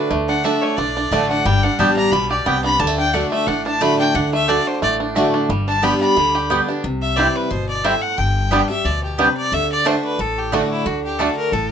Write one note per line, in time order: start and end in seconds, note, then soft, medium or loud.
0.00 0.29 D4 medium
0.00 0.11 B4 loud
0.11 0.53 D2 medium
0.11 0.42 D3 medium
0.11 0.59 A3 medium
0.28 0.45 D4 medium
0.28 0.46 F#5 loud
0.44 0.76 D3 medium
0.44 0.54 A3 medium
0.44 0.77 A3 medium
0.44 0.77 D4 medium
0.44 0.78 D4 medium
0.44 0.54 F#4 medium
0.44 0.77 F#4 medium
0.44 0.54 D5 medium
0.44 0.63 E5 medium
0.44 0.54 A5 loud
0.62 1.09 A3 medium
0.62 0.78 C#5 loud
0.77 1.07 B1 medium
0.77 1.42 A2 medium
0.77 0.96 D4 medium
0.77 1.28 D5 medium
0.97 1.30 D4 medium
1.11 1.40 A1 medium
1.11 1.44 D3 medium
1.11 1.22 A3 medium
1.11 1.44 A3 loud
1.11 1.46 A3 medium
1.11 1.44 D4 medium
1.11 1.22 F#4 medium
1.11 1.45 F#4 loud
1.11 1.22 D5 loud
1.11 1.22 A5 loud
1.29 1.64 D4 medium
1.29 1.47 F#5 loud
1.45 1.66 G1 loud
1.45 2.10 G2 medium
1.45 1.79 G3 medium
1.45 1.64 G5 loud
1.63 1.97 D4 medium
1.63 1.80 F#5 loud
1.79 2.08 A1 medium
1.79 2.11 G3 medium
1.79 1.89 B3 medium
1.79 2.12 B3 medium
1.79 2.12 D4 medium
1.79 1.89 G4 medium
1.79 2.12 G4 loud
1.79 1.89 D5 medium
1.79 1.89 G5 loud
1.79 1.96 A5 medium
1.96 2.64 D4 medium
1.96 2.13 A#5 loud
2.12 2.41 B1 medium
2.12 2.45 B2 medium
2.12 2.61 G3 medium
2.12 2.30 B5 loud
2.31 2.77 G4 medium
2.31 2.48 D5 medium
2.46 2.75 C2 medium
2.46 2.79 C3 medium
2.46 2.80 B3 medium
2.46 2.56 B3 medium
2.46 2.56 G4 medium
2.46 2.56 D5 medium
2.46 2.64 G5 loud
2.46 2.57 G5 loud
2.64 2.98 D4 medium
2.64 2.81 B5 loud
2.80 3.22 D2 loud
2.80 3.12 D3 medium
2.80 2.87 G3 medium
2.80 2.97 A5 loud
2.87 3.14 A3 medium
2.98 3.13 D4 medium
2.98 3.15 G5 loud
3.13 3.46 D3 medium
3.13 3.23 A3 medium
3.13 3.46 A3 medium
3.13 3.47 D4 medium
3.13 3.46 D4 medium
3.13 3.24 F#4 medium
3.13 3.47 F#4 medium
3.13 3.24 D5 medium
3.13 3.31 F#5 medium
3.13 3.24 A5 loud
3.31 3.78 A3 medium
3.31 3.48 E5 medium
3.47 3.89 A1 medium
3.47 4.12 A2 medium
3.47 3.66 D4 medium
3.47 3.65 F#5 loud
3.66 3.99 D4 medium
3.66 3.83 A5 loud
3.81 4.13 D3 medium
3.81 3.91 A3 loud
3.81 4.14 A3 loud
3.81 4.30 A3 medium
3.81 4.14 D4 medium
3.81 3.91 F#4 medium
3.81 4.14 F#4 medium
3.81 3.91 D5 loud
3.81 3.91 A5 medium
3.81 3.99 B5 loud
3.99 4.15 D4 medium
3.99 4.17 G5 loud
4.14 4.57 D2 loud
4.14 4.47 D3 medium
4.14 4.49 D4 medium
4.14 4.33 F#5 medium
4.33 4.79 A3 medium
4.33 4.50 E5 loud
4.48 4.80 D3 medium
4.48 4.58 A3 medium
4.48 4.81 A3 medium
4.48 4.97 D4 medium
4.48 4.81 D4 loud
4.48 4.58 F#4 medium
4.48 4.81 F#4 medium
4.48 4.58 D5 medium
4.48 4.69 D5 medium
4.48 4.58 A5 medium
4.67 5.13 D3 medium
4.67 4.82 C5 medium
4.82 5.24 A1 medium
4.82 5.47 A2 medium
4.82 5.15 A3 medium
4.82 4.94 D5 medium
5.00 5.33 D4 medium
5.15 5.48 D3 loud
5.15 5.25 A3 medium
5.15 5.49 A3 medium
5.15 5.48 A3 medium
5.15 5.49 D4 loud
5.15 5.25 F#4 loud
5.15 5.49 F#4 loud
5.15 5.26 D5 medium
5.15 5.26 A5 medium
5.34 5.50 D4 medium
5.49 5.92 G1 loud
5.49 6.14 G2 medium
5.49 5.82 G3 medium
5.68 6.00 D4 medium
5.68 5.85 A5 loud
5.82 6.15 G3 medium
5.82 6.16 G3 medium
5.82 5.92 B3 medium
5.82 6.15 B3 medium
5.82 6.15 D4 medium
5.82 5.93 G4 medium
5.82 6.16 G4 medium
5.82 5.93 D5 medium
5.82 5.93 G5 loud
5.82 6.00 B5 loud
6.01 6.47 D4 medium
6.01 6.47 B5 loud
6.17 6.59 D2 medium
6.17 6.81 D3 medium
6.17 6.65 G3 medium
6.35 6.81 G4 medium
6.50 6.67 G3 medium
6.50 6.60 B3 medium
6.50 6.84 B3 medium
6.50 6.68 B3 medium
6.50 6.68 D4 loud
6.50 6.60 G4 loud
6.50 6.67 G4 medium
6.50 6.60 D5 medium
6.50 6.60 G5 loud
6.68 6.84 D4 medium
6.68 6.84 D4 soft
6.68 6.83 G4 medium
6.84 7.26 C2 medium
6.84 7.48 C3 medium
7.02 7.18 E5 loud
7.16 7.49 E3 medium
7.16 7.50 G3 medium
7.16 7.26 G3 medium
7.16 7.27 C4 medium
7.16 7.50 C4 medium
7.16 7.26 C4 medium
7.16 7.27 E4 loud
7.16 7.50 E4 loud
7.16 7.26 E4 medium
7.16 7.27 C5 loud
7.16 7.37 D5 medium
7.16 7.27 G5 loud
7.36 7.52 B4 medium
7.51 7.93 G1 medium
7.51 7.83 B2 medium
7.51 7.68 C5 loud
7.69 7.86 D5 loud
7.84 8.17 A2 medium
7.84 7.93 G3 medium
7.84 7.94 C4 medium
7.84 7.93 C4 medium
7.84 7.94 E4 medium
7.84 7.93 E4 medium
7.84 7.94 C5 medium
7.84 8.03 E5 medium
7.84 7.94 G5 loud
8.02 8.20 F#5 loud
8.18 8.60 G1 loud
8.18 8.82 G2 medium
8.18 8.69 G5 medium
8.51 8.69 G3 medium
8.51 8.60 G3 medium
8.51 8.61 B3 medium
8.51 8.69 B3 medium
8.51 8.60 B3 medium
8.51 8.69 D4 medium
8.51 8.60 D4 medium
8.51 8.61 G4 medium
8.51 8.68 G4 medium
8.51 8.61 D5 medium
8.51 8.61 G5 loud
8.69 8.85 D4 medium
8.69 8.84 G4 medium
8.69 8.87 E5 medium
8.85 9.27 D2 medium
8.85 9.17 B2 medium
8.85 9.03 D5 medium
9.04 9.21 G4 medium
9.18 9.51 C3 medium
9.18 9.27 G3 medium
9.18 9.28 B3 medium
9.18 9.27 B3 medium
9.18 9.27 D4 medium
9.18 9.28 G4 medium
9.18 9.37 B4 medium
9.18 9.28 D5 medium
9.18 9.28 G5 loud
9.37 9.55 D5 loud
9.52 9.94 D2 medium
9.52 9.83 D3 medium
9.52 9.71 E5 loud
9.72 9.89 D5 loud
9.85 10.17 D3 medium
9.85 9.95 A3 medium
9.85 10.18 A3 medium
9.85 9.94 A3 medium
9.85 10.18 D4 medium
9.85 9.94 D4 medium
9.85 9.95 F#4 medium
9.85 10.18 F#4 loud
9.85 10.04 C5 medium
9.85 9.95 D5 medium
9.85 9.95 A5 loud
10.05 10.22 B4 medium
10.19 10.61 A1 medium
10.19 10.83 A2 medium
10.19 10.40 A4 medium
10.38 10.55 G4 medium
10.52 10.84 D3 loud
10.52 10.62 A3 medium
10.52 10.85 A3 loud
10.52 10.61 A3 medium
10.52 10.85 D4 loud
10.52 10.61 D4 medium
10.52 10.62 F#4 medium
10.52 10.70 F#4 medium
10.52 10.85 F#4 loud
10.52 10.62 D5 loud
10.52 10.62 A5 medium
10.71 10.88 E4 medium
10.86 11.28 D2 loud
10.86 11.18 D3 medium
10.86 11.03 F#4 medium
11.04 11.20 G4 medium
11.18 11.51 D3 medium
11.18 11.29 A3 medium
11.18 11.52 A3 medium
11.18 11.28 A3 medium
11.18 11.52 D4 medium
11.18 11.28 D4 medium
11.18 11.29 F#4 loud
11.18 11.52 F#4 medium
11.18 11.36 A4 medium
11.18 11.29 D5 loud
11.18 11.29 A5 loud
11.36 11.54 A#4 loud
11.52 11.72 A1 medium
11.52 11.72 A2 medium
11.52 11.72 A4 medium